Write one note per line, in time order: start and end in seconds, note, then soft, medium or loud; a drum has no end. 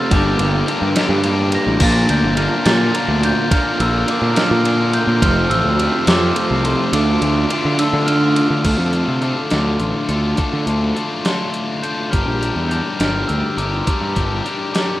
0.00 0.11 F3 medium
0.00 0.10 C4 medium
0.00 0.13 F4 loud
0.00 0.13 F4 medium
0.00 5.17 F4 medium
0.00 0.11 C5 medium
0.00 0.12 E6 medium
0.11 0.34 G1 loud
0.11 0.66 G2 medium
0.11 0.67 D3 medium
0.11 0.67 G3 loud
0.11 0.68 A#3 medium
0.11 0.68 D4 loud
0.11 0.68 G4 loud
0.11 1.79 A#4 medium
0.11 0.93 A#4 medium
0.11 5.18 D5 medium
0.11 1.80 G5 medium
0.11 0.93 D6 medium
0.11 kick loud
0.11 ride loud
0.39 0.62 G1 medium
0.39 ride medium
0.68 0.95 G2 medium
0.68 0.96 D3 medium
0.68 0.96 G3 medium
0.68 0.97 A#3 medium
0.68 0.97 D4 medium
0.68 0.97 G4 medium
0.68 ride medium
0.82 0.94 G2 medium
0.96 1.23 G2 loud
0.96 1.23 D3 loud
0.96 1.24 G3 loud
0.96 1.25 A#3 loud
0.96 1.25 D4 loud
0.96 1.25 G4 loud
0.96 snare loud
0.96 ride loud
1.09 1.56 G2 medium
1.24 1.80 G2 medium
1.24 1.80 D3 medium
1.24 1.80 G3 medium
1.24 1.81 A#3 medium
1.24 1.82 D4 medium
1.24 1.80 G4 loud
1.24 ride medium
1.52 1.80 G5 medium
1.52 1.83 A#6 loud
1.52 ride medium
1.67 1.78 A1 medium
1.80 2.04 A#1 medium
1.80 2.37 A#2 medium
1.80 2.36 D3 loud
1.80 2.37 F3 loud
1.80 2.37 A#3 loud
1.80 2.38 D4 loud
1.80 2.38 F4 medium
1.80 5.18 A#4 medium
1.80 2.08 F5 medium
1.80 5.18 A#5 medium
1.80 2.12 A6 medium
1.80 kick loud
1.80 crash loud
2.09 2.21 D2 medium
2.09 2.36 E5 medium
2.09 2.39 G6 medium
2.09 ride medium
2.23 2.47 G1 medium
2.37 2.64 A#2 medium
2.37 2.65 D3 medium
2.37 2.65 F3 medium
2.37 2.65 A#3 medium
2.37 2.65 D4 medium
2.37 2.66 F4 medium
2.37 2.64 D5 medium
2.37 2.64 F6 medium
2.37 ride medium
2.65 2.93 A#2 loud
2.65 2.89 A#2 medium
2.65 2.93 D3 loud
2.65 2.93 F3 medium
2.65 2.93 A#3 loud
2.65 2.93 D4 loud
2.65 2.94 F4 loud
2.65 2.92 F5 medium
2.65 2.92 A6 medium
2.65 snare loud
2.65 ride loud
2.93 3.49 A#2 medium
2.93 3.49 D3 medium
2.93 3.50 F3 medium
2.93 3.50 A#3 medium
2.93 3.50 D4 medium
2.93 3.51 F4 loud
2.93 ride medium
3.08 3.32 D2 medium
3.23 3.50 E5 medium
3.23 3.50 G6 loud
3.23 ride medium
3.50 4.06 A#2 medium
3.50 4.06 D3 loud
3.50 4.06 F3 loud
3.50 4.07 A#3 loud
3.50 4.07 D4 medium
3.50 4.08 F4 loud
3.50 3.79 D5 medium
3.50 3.81 F6 medium
3.50 kick loud
3.50 ride loud
3.80 4.03 A#1 medium
3.80 4.08 C5 medium
3.80 4.07 E6 medium
3.80 ride medium
4.07 4.35 A#2 medium
4.07 4.35 D3 medium
4.07 4.35 F3 medium
4.07 4.36 A#3 medium
4.07 4.36 D4 medium
4.07 4.37 F4 medium
4.07 ride medium
4.11 4.36 A#4 medium
4.11 4.39 D6 medium
4.22 4.34 A#2 medium
4.36 4.64 A#2 loud
4.36 4.64 D3 loud
4.36 4.64 F3 loud
4.36 4.65 A#3 loud
4.36 4.65 D4 loud
4.36 4.66 F4 loud
4.36 4.64 D5 medium
4.36 4.63 F6 medium
4.36 snare loud
4.36 ride medium
4.51 4.97 A#2 loud
4.64 5.20 A#2 medium
4.64 5.20 D3 medium
4.64 5.21 F3 medium
4.64 5.21 A#3 loud
4.64 5.21 D4 medium
4.64 5.22 F4 loud
4.64 ride medium
4.93 5.21 E5 medium
4.93 5.23 G6 loud
4.93 ride medium
5.07 5.19 A#2 medium
5.20 5.46 F1 loud
5.20 5.77 F2 medium
5.20 5.77 C3 loud
5.20 5.78 F3 loud
5.20 5.79 A3 medium
5.20 5.78 C4 loud
5.20 8.61 F4 medium
5.20 5.79 F4 loud
5.20 6.91 A4 medium
5.20 6.91 C5 medium
5.20 5.49 C5 medium
5.20 6.91 A5 medium
5.20 5.51 F6 loud
5.20 kick loud
5.20 ride loud
5.50 5.62 A1 medium
5.50 6.05 C5 medium
5.50 6.09 E6 loud
5.50 ride medium
5.64 5.88 D2 medium
5.78 6.05 F2 medium
5.78 6.05 C3 medium
5.78 6.06 F3 medium
5.78 6.07 A3 medium
5.78 6.06 C4 medium
5.78 6.07 F4 medium
5.78 ride medium
6.06 6.34 F2 loud
6.06 6.31 F2 loud
6.06 6.34 C3 loud
6.06 6.35 F3 loud
6.06 6.36 A3 loud
6.06 6.35 C4 loud
6.06 6.36 F4 loud
6.06 6.66 D6 loud
6.06 snare loud
6.06 ride loud
6.10 6.62 A4 medium
6.35 6.91 F2 loud
6.35 6.91 C3 medium
6.35 6.92 F3 medium
6.35 6.93 A3 medium
6.35 6.92 C4 loud
6.35 6.93 F4 loud
6.35 ride medium
6.51 6.74 C2 medium
6.65 6.93 A4 medium
6.65 6.94 C6 medium
6.65 ride medium
6.93 7.16 D2 loud
6.93 7.48 D3 loud
6.93 7.49 F3 medium
6.93 7.49 A3 medium
6.93 7.49 D4 loud
6.93 7.49 F4 loud
6.93 8.05 A4 medium
6.93 8.64 D5 medium
6.93 8.64 F5 medium
6.93 8.64 A5 medium
6.93 8.05 D6 medium
6.93 ride loud
7.22 7.45 D2 medium
7.22 ride medium
7.50 7.78 D3 medium
7.50 7.78 F3 medium
7.50 7.78 A3 medium
7.50 7.78 D4 medium
7.50 7.79 F4 medium
7.50 ride medium
7.65 7.77 D3 medium
7.79 8.06 D3 loud
7.79 8.07 F3 loud
7.79 8.06 A3 loud
7.79 8.06 D4 loud
7.79 8.07 F4 loud
7.79 8.09 E6 medium
7.79 ride loud
7.93 8.40 D3 medium
8.06 8.63 D3 medium
8.06 8.64 F3 medium
8.06 8.63 A3 medium
8.06 8.63 D4 medium
8.06 8.64 F4 medium
8.06 8.63 F6 loud
8.06 ride medium
8.36 ride medium
8.51 8.62 D3 medium
8.64 8.77 D2 medium
8.64 9.52 D3 medium
8.64 9.22 A3 medium
8.64 8.95 D4 medium
8.64 8.94 F4 medium
8.64 8.93 A4 medium
8.64 9.24 F6 medium
8.64 kick medium
8.64 closed hi-hat medium
8.64 crash medium
8.79 9.02 F2 medium
8.93 9.22 D4 soft
8.93 9.23 F4 medium
8.93 9.23 A4 medium
8.93 closed hi-hat soft
9.08 9.32 C3 medium
9.22 9.51 A3 medium
9.22 9.52 D4 medium
9.22 9.51 F4 medium
9.22 9.50 A4 medium
9.22 9.49 D6 medium
9.22 closed hi-hat soft
9.50 9.76 D2 medium
9.50 10.36 D3 medium
9.50 10.36 A3 medium
9.50 10.10 D4 medium
9.50 10.09 F4 medium
9.50 10.07 A4 medium
9.50 9.82 D6 medium
9.50 snare medium
9.50 closed hi-hat medium
9.79 9.92 A1 medium
9.79 10.07 C6 medium
9.79 closed hi-hat medium
10.08 10.33 D2 medium
10.08 10.38 D4 medium
10.08 10.38 F4 soft
10.08 10.37 A4 medium
10.08 10.39 C6 medium
10.08 closed hi-hat soft
10.36 10.96 D3 medium
10.36 10.94 A3 medium
10.36 10.68 D4 medium
10.36 10.67 F4 medium
10.36 10.65 A4 medium
10.36 10.98 D6 medium
10.36 kick medium
10.36 closed hi-hat medium
10.53 10.65 D3 medium
10.66 10.91 D2 medium
10.66 10.96 D4 soft
10.66 10.96 F4 medium
10.66 10.96 A4 medium
10.66 closed hi-hat medium
10.96 11.25 A3 medium
10.96 11.26 D4 medium
10.96 11.26 F4 medium
10.96 11.24 A4 medium
10.96 closed hi-hat soft
11.24 12.12 D3 medium
11.24 12.11 A3 medium
11.24 11.85 D4 medium
11.24 11.84 F4 medium
11.24 11.82 A4 medium
11.24 11.84 C6 medium
11.24 snare medium
11.24 closed hi-hat medium
11.54 closed hi-hat medium
11.83 12.11 D4 soft
11.83 12.12 F4 medium
11.83 12.11 A4 medium
11.83 12.10 G6 medium
11.83 closed hi-hat medium
12.10 12.25 G1 medium
12.10 12.70 G3 medium
12.10 12.42 D4 medium
12.10 12.41 G4 medium
12.10 12.40 A#4 medium
12.10 12.66 F6 medium
12.10 kick loud
12.10 closed hi-hat medium
12.27 12.51 A#1 medium
12.41 12.70 D4 medium
12.41 12.71 G4 medium
12.41 12.71 A#4 medium
12.41 closed hi-hat medium
12.56 12.80 E2 medium
12.68 13.00 G3 medium
12.68 13.00 D4 medium
12.68 12.98 G4 medium
12.68 12.98 A#4 medium
12.68 12.97 G6 medium
12.68 closed hi-hat medium
12.99 13.24 G1 medium
12.99 13.85 G3 medium
12.99 13.59 D4 medium
12.99 13.57 G4 medium
12.99 13.56 A#4 medium
12.99 13.30 F6 medium
12.99 snare medium
12.99 closed hi-hat medium
13.28 13.41 D2 medium
13.28 13.58 E6 medium
13.28 closed hi-hat medium
13.57 13.81 G1 medium
13.57 13.87 D4 soft
13.57 13.86 G4 medium
13.57 13.87 A#4 medium
13.57 13.81 D6 medium
13.57 closed hi-hat medium
13.80 13.87 C6 medium
13.87 14.44 G3 medium
13.87 14.17 D4 medium
13.87 14.15 G4 medium
13.87 14.15 A#4 medium
13.87 14.78 A#5 medium
13.87 kick loud
13.87 closed hi-hat medium
14.01 14.13 G2 medium
14.16 14.40 G1 medium
14.16 14.45 D4 medium
14.16 14.45 G4 medium
14.16 14.46 A#4 medium
14.16 kick medium
14.16 closed hi-hat medium
14.45 14.75 G3 medium
14.45 14.75 D4 medium
14.45 14.73 G4 medium
14.45 14.73 A#4 medium
14.45 closed hi-hat soft
14.73 15.00 G3 medium
14.73 15.00 D4 medium
14.73 15.00 G4 medium
14.73 15.00 A#4 medium
14.73 15.00 D6 medium
14.73 snare medium
14.73 closed hi-hat medium